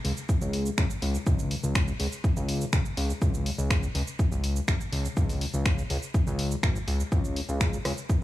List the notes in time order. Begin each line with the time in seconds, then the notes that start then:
0.05 C#2, open hi-hat
0.17 shaker
0.29 kick, shaker
0.41 C#2, shaker
0.53 open hi-hat
0.66 shaker
0.78 C#2, finger snap, kick, shaker
0.90 shaker
1.02 C#2, open hi-hat
1.15 shaker
1.27 C#2, kick, shaker
1.39 shaker
1.51 open hi-hat
1.64 C#2, shaker
1.75 finger snap, kick, shaker
1.88 shaker
2.00 C#2, open hi-hat
2.12 shaker
2.24 kick, shaker
2.37 C#2, shaker
2.49 open hi-hat
2.61 shaker
2.73 C#2, finger snap, kick, shaker
2.85 shaker
2.97 C#2, open hi-hat
3.10 shaker
3.22 C#2, kick, shaker
3.34 shaker
3.46 open hi-hat
3.58 C#2, shaker
3.70 finger snap, kick, shaker
3.83 shaker
3.95 C#2, open hi-hat
4.07 shaker
4.19 kick, shaker
4.32 C#2, shaker
4.44 open hi-hat
4.56 shaker
4.68 C#2, finger snap, kick, shaker
4.81 shaker
4.92 C#2, open hi-hat
5.05 shaker
5.17 C#2, kick, shaker
5.29 open hi-hat, shaker
5.41 open hi-hat
5.54 C#2, shaker
5.66 finger snap, kick, shaker
5.78 shaker
5.90 C#2, open hi-hat
6.03 shaker
6.14 kick, shaker
6.27 C#2, shaker
6.39 open hi-hat
6.51 shaker
6.63 G#1, finger snap, kick, shaker
6.76 shaker
6.88 C#2, open hi-hat
7.00 shaker
7.12 C#2, kick, shaker
7.25 shaker
7.36 open hi-hat
7.49 C#2, shaker
7.61 finger snap, kick, shaker
7.73 shaker
7.85 C#2, cross-stick, open hi-hat
7.98 shaker
8.10 kick, shaker